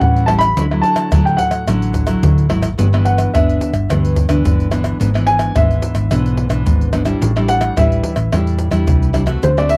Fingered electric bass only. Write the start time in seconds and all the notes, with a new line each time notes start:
0.01 A2
0.28 A1
0.57 D2
1.12 D2
1.68 A1
2.23 D3
2.50 G#1
2.79 G1
3.34 G1
3.73 G1
3.90 D2
4.29 D2
4.45 G1
5.01 G#1
5.56 G#1
5.95 G#1
6.11 B1
6.50 B1
6.66 G#1
7.21 A1
7.77 A1
8.16 A1
8.33 E2
8.72 E2
8.88 C2
9.43 D2